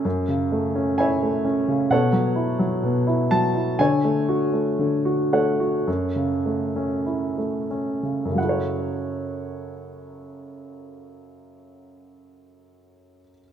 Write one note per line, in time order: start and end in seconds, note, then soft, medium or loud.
0.05 1.87 F#2 soft
0.28 1.67 C#3 soft
0.52 1.21 A3 soft
0.75 1.43 C#4 soft
0.98 1.88 E4 soft
0.98 1.88 C#5 soft
0.98 1.88 E5 soft
0.98 1.93 G#5 soft
1.23 1.89 A3 soft
1.45 1.89 C#4 soft
1.68 1.90 C#3 soft
1.90 2.82 B2 soft
1.90 3.77 A4 soft
1.90 3.76 C#5 soft
1.90 3.35 F#5 medium
2.13 2.58 F#3 soft
2.35 3.05 E4 soft
2.59 3.30 F#3 soft
2.83 3.77 B2 soft
3.07 3.54 E4 soft
3.31 3.78 F#3 soft
3.31 3.81 A5 medium
3.55 3.79 E4 soft
3.79 4.78 D3 soft
3.79 5.32 C#5 soft
3.79 5.37 G#5 medium
4.04 4.52 A3 soft
4.29 5.04 F#4 soft
4.53 5.31 A3 soft
4.79 5.84 D3 soft
5.05 5.58 F#4 soft
5.33 5.86 A3 soft
5.33 7.67 A4 soft
5.33 7.67 C#5 soft
5.33 7.02 F#5 soft
5.60 5.87 F#4 soft
5.87 8.24 F#2 soft
6.16 8.01 C#3 soft
6.46 7.37 A3 soft
6.76 7.69 C#4 soft
7.06 8.34 E4 soft
7.38 8.35 A3 soft
7.71 8.36 C#4 soft
8.03 8.28 C#3 soft
8.25 13.19 F#2 soft
8.30 13.24 C#3 soft
8.35 13.29 F#3 soft
8.35 13.32 F#5 soft
8.40 13.34 E4 soft
8.44 13.38 A4 soft
8.49 13.43 C#5 soft